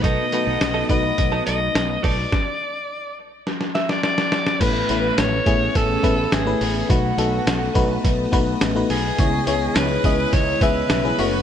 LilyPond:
<<
  \new Staff \with { instrumentName = "Alto saxophone" } { \time 4/4 \key cis \minor \tempo 4 = 105 dis''4. dis''4 dis''4 d''8~ | d''4. r4 e''16 d''16 d''4 | b'4 cis''4 a'4 gis'4 | fis'2 r4. gis'8~ |
gis'4 b'4 cis''8 b'4. | }
  \new Staff \with { instrumentName = "FM electric piano" } { \time 4/4 \key cis \minor <a dis' fis' b'>16 r16 <a dis' fis' b'>8. r16 <a dis' fis' b'>4~ <a dis' fis' b'>16 r4 r16 | r1 | <a b cis' e' b'>16 r16 <a b cis' e' b'>8. r16 <a b cis' e' gis'>8. r16 <a b cis' e' b'>8 r16 <a b cis' e' b'>8 r16 | <a b dis' fis' b'>16 r16 <a b dis' fis' a'>8. r16 <a b dis' fis' b'>8. r16 <a b dis' fis' b'>8 r16 <a b dis' fis' b'>8 r16 |
<b cis' e' gis' cis''>16 r16 <b cis' e' gis' cis''>8. r16 <b cis' e' gis' dis''>8. r16 <b cis' e' gis' e''>8 r16 <b cis' e' gis' b'>16 <a cis' e' fis' cis''>8 | }
  \new Staff \with { instrumentName = "FM electric piano" } { \clef bass \time 4/4 \key cis \minor b,4 r2. | r1 | a,4. r2 r8 | b,4. r2 r8 |
cis4. r2 r8 | }
  \new Staff \with { instrumentName = "Clean electric guitar" } { \time 4/4 \key cis \minor <fis b dis' a'>16 r16 <fis b dis' a'>16 <fis b dis' a'>16 r16 <fis b dis' a'>16 r8. <fis b dis' a'>16 <fis b dis' a'>16 r8. <fis b dis' a'>16 r16 | r1 | r1 | r1 |
r1 | }
  \new Staff \with { instrumentName = "String machine" } { \time 4/4 \key cis \minor << { dis'1 | r1 | <a cis'>1 | <a dis''>1 |
<cis gis b e'>2.~ <cis gis b e'>8 <fis cis' a'>8 | } \\ { <a b>1 | r1 | b1~ | b1 |
r2. r8 gis''8 | } >> }
  \new Staff \with { instrumentName = "Fretless electric bass" } { \clef bass \time 4/4 \key cis \minor b,,8 r16 b,,16 b,,8 b,,8 b,,8 b,,8 b,,8 b,,8 | r1 | a,,8 a,,8 a,,8 a,,8 a,,8 a,,8 gis,,8 a,,8 | b,,8 b,,8 b,,8 b,,8 b,,8 b,,8 a,,8 b,,8 |
cis,8 cis,8 cis,8 cis,8 cis,8 cis,8 b,,8 fis,,8 | }
  \new DrumStaff \with { instrumentName = "Drums" } \drummode { \time 4/4 <hh bd>8 hh8 <hh sn>8 <hh bd>8 <hh bd>8 hh8 <hh sn>8 <hho bd>8 | <bd sn>4 r4 sn16 sn16 sn16 sn16 sn16 sn16 sn16 sn16 | <cymc hh bd>8 hh8 <hh sn tamb>8 <hh bd>8 <hh bd>8 <hh bd>8 <hh sn tamb>8 hho8 | <hh bd>8 hh8 <hh sn tamb>8 <hh bd>8 <hh bd>8 <hh bd>8 <hh sn tamb>8 hho8 |
<hh bd>8 hh8 <hh sn tamb>8 <hh bd>8 <hh bd>8 <hh bd>8 <hh sn tamb>8 hho8 | }
>>